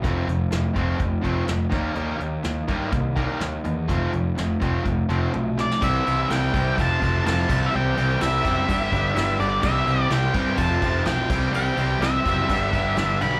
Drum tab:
CC |----------------|----------------|----------------|x-------------x-|
RD |----------------|----------------|----------------|--x-x-x-x-x-x---|
HH |x-x-x-x-x-x-x-x-|x-x-x-x-x-x-x-x-|x-x-x-x-x-x-----|----------------|
SD |----o-------o-o-|----o-------o---|----o---------oo|----o-------o---|
T1 |----------------|----------------|------------o---|----------------|
BD |o-----o-o-o---o-|------o-o-o-----|o-----o-o-------|o-----o-o-o---o-|

CC |----------------|x---------------|----------------|
RD |--x-x-x-x-x-x-x-|--x-x-x-x-x-x-x-|x-x-x-x-x-x-x-x-|
HH |----------------|----------------|----------------|
SD |----o-------o---|----o-------o---|----o-------o---|
T1 |----------------|----------------|----------------|
BD |------o-o-o-----|o-----o-o-o---o-|------o-o-o-----|